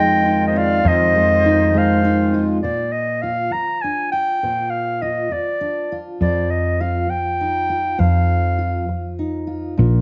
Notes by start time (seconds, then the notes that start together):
Already playing: F2 D#3 G#3 D#4 F4 D#5 G5
0.26 D#4
0.47 C5 D#5
0.56 F4 D5 F5
0.84 F2 C5
0.88 D#5
1.15 G#3
1.46 D#4
1.74 G#3 C5 F5
2.05 D#4
2.34 F4
2.62 A#2 C5 D5
2.92 D#5
3.22 F4 F5
3.52 A#5, muted steel-string acoustic guitar stroke
3.82 D4 G#5
4.12 F4 G5
4.43 A#2 C5
4.70 F5
5.02 F4 D#5
5.31 D5, muted steel-string acoustic guitar stroke
5.61 D4
5.92 F4
6.20 F2 C5 D5
6.51 D#5
6.81 F4 F5
7.09 G5, muted steel-string acoustic guitar stroke
7.41 D#4
7.70 F4
7.98 F2 C5 F5
8.58 F4
8.89 muted steel-string acoustic guitar stroke
9.19 D#4
9.47 F4
9.78 A#1 A#2